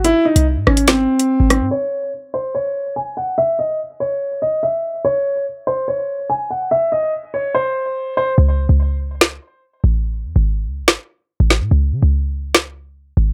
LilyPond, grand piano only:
\new Staff \with { instrumentName = "Grand piano" } { \time 4/4 \key a \lydian \tempo 4 = 144 e'8 dis'8 r8 cis'8 bis4. bis8 | cis''4 r8 bis'8 cis''4 gis''8 fis''8 | e''8 dis''8 r8 cis''4 dis''8 e''4 | cis''4 r8 bis'8 cis''4 gis''8 fis''8 |
e''8 dis''8 r8 cis''8 bis'4. bis'8 | r1 | r1 | r1 | }